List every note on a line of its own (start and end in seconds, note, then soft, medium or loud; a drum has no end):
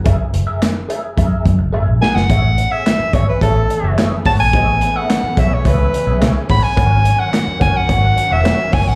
0.04 0.17 F#1 loud
0.04 0.26 G#4 medium
0.04 0.18 A#4 medium
0.04 0.18 E5 loud
0.04 kick loud
0.04 closed hi-hat medium
0.19 muted clean electric guitar stroke soft
0.33 0.45 F#1 medium
0.33 muted clean electric guitar stroke soft
0.33 closed hi-hat medium
0.47 0.60 G#4 soft
0.47 0.60 A#4 medium
0.47 0.61 E5 medium
0.61 muted clean electric guitar stroke soft
0.61 snare loud
0.61 clap medium
0.61 closed hi-hat loud
0.75 muted clean electric guitar stroke soft
0.89 1.10 G#4 medium
0.89 1.03 A#4 medium
0.89 1.02 E5 medium
0.89 closed hi-hat medium
1.03 muted clean electric guitar stroke soft
1.17 1.29 F#2 medium
1.17 1.43 G#4 medium
1.17 1.43 A#4 medium
1.17 1.44 E5 medium
1.17 kick medium
1.17 closed hi-hat medium
1.46 1.57 F#2 loud
1.46 muted clean electric guitar stroke soft
1.46 kick medium
1.46 closed hi-hat medium
1.59 1.74 F#1 medium
1.59 muted clean electric guitar stroke soft
1.73 1.85 G#1 loud
1.73 1.94 G#4 medium
1.73 1.87 A#4 medium
1.73 1.86 E5 loud
1.87 1.99 A#1 medium
1.87 muted clean electric guitar stroke medium
2.01 2.18 G#4 medium
2.01 2.15 A#4 medium
2.01 2.15 F#5 medium
2.01 2.17 G#5 loud
2.01 snare loud
2.15 2.27 F#1 medium
2.15 2.73 F#5 medium
2.15 muted clean electric guitar stroke soft
2.15 snare medium
2.29 2.64 A1 loud
2.29 6.73 E3 medium
2.29 6.73 A3 medium
2.29 6.73 B3 medium
2.29 8.95 C#4 medium
2.29 2.50 G#4 medium
2.29 2.43 C#5 medium
2.29 2.42 E5 medium
2.29 kick loud
2.29 closed hi-hat medium
2.43 muted clean electric guitar stroke soft
2.57 muted clean electric guitar stroke soft
2.57 closed hi-hat medium
2.72 2.84 G#4 medium
2.72 2.85 C#5 medium
2.72 3.16 E5 medium
2.72 2.86 E5 medium
2.86 muted clean electric guitar stroke soft
2.86 snare loud
2.86 clap medium
2.86 closed hi-hat medium
2.99 muted fingered electric bass stroke soft
2.99 muted clean electric guitar stroke soft
3.13 3.25 G#1 medium
3.13 3.35 G#4 medium
3.13 3.28 C#5 medium
3.13 3.27 C#5 medium
3.13 3.26 E5 medium
3.13 kick medium
3.13 closed hi-hat medium
3.28 3.41 B4 medium
3.28 muted clean electric guitar stroke soft
3.41 3.64 A1 medium
3.41 3.62 G#4 medium
3.41 3.94 A4 medium
3.41 3.63 C#5 medium
3.41 3.63 E5 medium
3.41 kick medium
3.41 closed hi-hat medium
3.70 muted clean electric guitar stroke soft
3.70 closed hi-hat medium
3.83 3.95 F#1 medium
3.83 3.97 G#4 soft
3.83 3.98 C#5 medium
3.83 3.98 E5 medium
3.98 4.19 G#4 medium
3.98 4.12 C#5 medium
3.98 4.11 E5 medium
3.98 snare loud
3.98 clap medium
3.98 closed hi-hat medium
4.12 muted clean electric guitar stroke soft
4.25 4.39 G#1 medium
4.25 4.42 G#4 medium
4.25 4.40 C#5 medium
4.25 4.39 F#5 medium
4.25 4.32 A5 loud
4.25 kick medium
4.25 open hi-hat medium
4.39 4.54 A#1 medium
4.39 4.98 G#5 loud
4.39 muted clean electric guitar stroke soft
4.53 4.88 A1 loud
4.53 4.74 G#4 medium
4.53 4.68 C#5 medium
4.53 4.67 E5 medium
4.53 kick loud
4.53 closed hi-hat medium
4.68 muted clean electric guitar stroke soft
4.81 muted clean electric guitar stroke soft
4.81 closed hi-hat medium
4.96 5.09 G#4 medium
4.96 5.09 C#5 medium
4.96 5.10 E5 medium
4.96 5.41 F#5 medium
5.10 muted clean electric guitar stroke soft
5.10 snare loud
5.10 clap medium
5.10 closed hi-hat medium
5.23 muted fingered electric bass stroke soft
5.23 muted clean electric guitar stroke soft
5.37 5.49 B1 medium
5.37 5.58 G#4 medium
5.37 5.51 C#5 medium
5.37 5.50 E5 medium
5.37 5.55 E5 medium
5.37 kick loud
5.37 closed hi-hat medium
5.52 5.69 C#5 medium
5.52 muted clean electric guitar stroke medium
5.65 5.88 C#2 medium
5.65 5.86 G#4 medium
5.65 6.22 B4 medium
5.65 5.86 C#5 medium
5.65 5.87 E5 medium
5.65 kick medium
5.65 closed hi-hat medium
5.93 muted clean electric guitar stroke soft
5.93 closed hi-hat medium
6.07 6.21 B1 medium
6.07 6.19 G#4 medium
6.07 6.20 C#5 medium
6.07 6.21 E5 medium
6.21 6.33 C#2 medium
6.21 6.42 G#4 medium
6.21 6.35 C#5 medium
6.21 6.34 E5 medium
6.21 snare medium
6.21 clap medium
6.21 closed hi-hat medium
6.35 muted clean electric guitar stroke medium
6.49 6.61 A1 medium
6.49 6.65 G#4 medium
6.49 6.63 C#5 medium
6.49 6.63 F#5 medium
6.49 6.65 B5 loud
6.49 kick loud
6.49 open hi-hat medium
6.63 7.21 G#5 loud
6.63 muted clean electric guitar stroke soft
6.77 7.11 G#1 loud
6.77 8.95 D#3 medium
6.77 8.95 F#3 medium
6.77 8.95 A#3 medium
6.77 6.98 A#4 medium
6.77 6.91 C#5 medium
6.77 6.90 F#5 loud
6.77 kick loud
6.77 closed hi-hat medium
6.91 muted clean electric guitar stroke soft
7.05 muted clean electric guitar stroke soft
7.05 closed hi-hat medium
7.18 7.31 A#4 medium
7.18 7.32 C#5 medium
7.18 7.32 F#5 medium
7.18 7.61 F#5 medium
7.32 muted clean electric guitar stroke soft
7.32 snare medium
7.32 clap medium
7.32 closed hi-hat medium
7.46 muted clean electric guitar stroke soft
7.46 muted fingered electric bass stroke soft
7.60 7.72 F#1 medium
7.60 7.81 A#4 medium
7.60 7.74 C#5 medium
7.60 7.73 F#5 medium
7.60 7.78 G#5 loud
7.60 kick loud
7.60 closed hi-hat medium
7.74 8.34 F#5 loud
7.74 muted clean electric guitar stroke soft
7.88 8.12 G#1 medium
7.88 8.09 A#4 medium
7.88 8.10 C#5 medium
7.88 8.10 F#5 medium
7.88 kick medium
7.88 closed hi-hat medium
8.16 muted clean electric guitar stroke soft
8.16 closed hi-hat medium
8.30 8.43 E1 medium
8.30 8.43 A#4 medium
8.30 8.43 C#5 medium
8.30 8.75 E5 loud
8.30 8.44 F#5 medium
8.44 8.65 A#4 loud
8.44 8.58 C#5 loud
8.44 8.57 F#5 loud
8.44 snare loud
8.44 clap medium
8.44 closed hi-hat medium
8.58 muted clean electric guitar stroke medium
8.72 8.84 F#1 medium
8.72 8.89 A#4 medium
8.72 8.86 C#5 medium
8.72 8.86 G#5 medium
8.72 8.89 G#5 medium
8.72 kick loud
8.72 open hi-hat medium
8.86 8.95 A1 medium
8.86 8.95 F#5 medium
8.86 muted clean electric guitar stroke medium